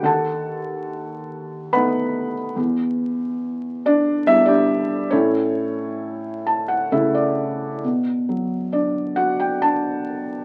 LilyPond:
<<
  \new Staff \with { instrumentName = "Felt piano" } { \time 3/4 \key a \mixolydian \tempo 4 = 69 << { <a' fis'' a''>2 <b' fis'' b''>8. r16 | r4. <d' d''>8 e''16 <d' g' d''>8. | <cis' e' a' cis''>2 r4 | \key b \minor r4 d''8 fis''16 g''16 a''4 | } \\ { r2. | r2. | r4. a''16 fis''16 e''16 d''8. | r2. | } >> }
  \new Staff \with { instrumentName = "Felt piano" } { \time 3/4 \key a \mixolydian dis,2 <a b dis'>4 | e,2 <g b e'>4 | a,2 <cis a e'>4 | \key b \minor b,8 fis8 d'8 fis'8 d'4 | }
>>